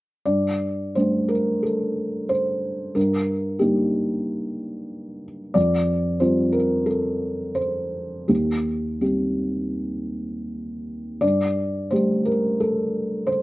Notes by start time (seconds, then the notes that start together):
0.25 G2 D5
0.95 G3 A3 D4 C5
1.28 A#4
1.63 A4
2.29 C5
2.95 G2 A#4
3.59 G3 A#3 D#4 G4
5.54 F2 D5
6.20 G3 C4 F4 C5
6.52 A#4
6.86 A4
7.55 C5
8.28 D#2 G4
9.01 G3 C4 G4
11.21 G2 D5
11.91 G3 A3 G4 C5
12.25 A#4
12.60 A4
13.27 C5